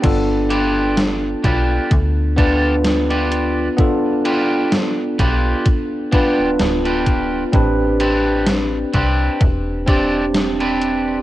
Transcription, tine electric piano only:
X:1
M:4/4
L:1/8
Q:"Swing 16ths" 1/4=64
K:Gmix
V:1 name="Tine electric piano"
[B,DFA]4- [B,DFA] [B,DFB]3 | [B,DFA]4- [B,DFA] [B,DFB]3 | [CDGB]4- [CDGB] [CDG]3 |]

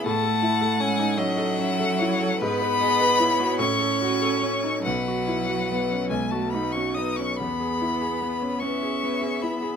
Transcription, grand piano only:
X:1
M:6/8
L:1/16
Q:3/8=49
K:E
V:1 name="Grand piano"
A,, A E A C D C A C A E A | G,, B G B E F A,, A F A C D | B,,, F E F B, C B,,, F D F B, C | E,, G E G B, C B, G B, G E G |]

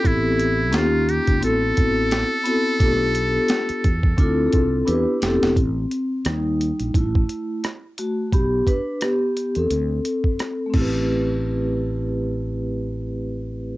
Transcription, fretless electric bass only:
X:1
M:4/4
L:1/16
Q:"Swing 16ths" 1/4=87
K:Am
V:1 name="Fretless electric bass" clef=bass
A,,,4 ^D,,3 ^C,, A,,,2 A,,,3 z3 | B,,,4 z2 E,,2 D,,2 C,,2 E,, z F,,, E,,, | A,,,2 z2 ^D,,3 ^A,,, =A,,,2 z6 | B,,,2 z4 z E,, D,,2 z4 A,,,2- |
A,,,16 |]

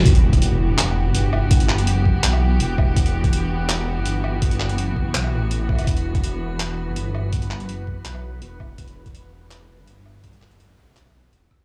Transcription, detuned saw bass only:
X:1
M:4/4
L:1/16
Q:1/4=165
K:Em
V:1 name="Detuned saw bass" clef=bass
E,,,8- E,,,3 G,,,4- G,,,- | G,,,3 F,,,4 z B,,,4 E,,,4 | E,,,8- E,,,3 G,,,4- G,,,- | G,,,3 F,,,4 z B,,,2 A,,,4- A,,, E,,, |
E,,,8- E,,,3 G,,,4- G,,,- | G,,,3 F,,,4 z B,,,4 E,,,4 | E,,,8- E,,,3 G,,,4- G,,,- | G,,,3 F,,,4 z B,,,4 E,,,4 |]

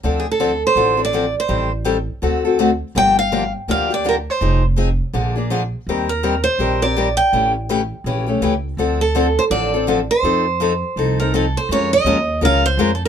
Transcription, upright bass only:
X:1
M:4/4
L:1/8
Q:"Swing" 1/4=165
K:Dm
V:1 name="Upright bass" clef=bass
D,,4 A,,,4 | A,,,4 D,,4 | G,,,4 D,,4 | F,,,4 B,,,4 |
_E,,4 B,,,4 | A,,,4 B,,,2 ^C,,2 | D,,4 A,,,4 | F,,4 C,,4 |
[K:Bbm] F,,2 E,,2 D,,2 F,,2 |]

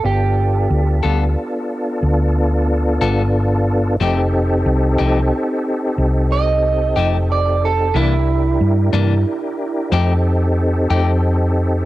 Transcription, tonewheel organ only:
X:1
M:12/8
L:1/8
Q:3/8=61
K:F
V:1 name="Tonewheel organ"
[=B,DFA]12 | [C_EGA]12 | [DEGB]6 [C_EGA]6 |]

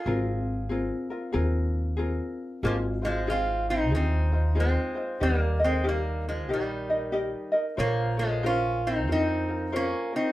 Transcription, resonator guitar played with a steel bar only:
X:1
M:4/4
L:1/8
Q:"Swing" 1/4=93
K:Ab
V:1 name="Resonator guitar played with a steel bar"
[FA]6 z2 | [F,B,] [F,A,] [CF] [CE] [CE]2 [A,C]2 | [G,B,] [A,C] [G,B,] [F,A,] [E,G,]3 z | [F,B,] [F,A,] [DF] [CE] [CE]2 [B,D] [CE] |]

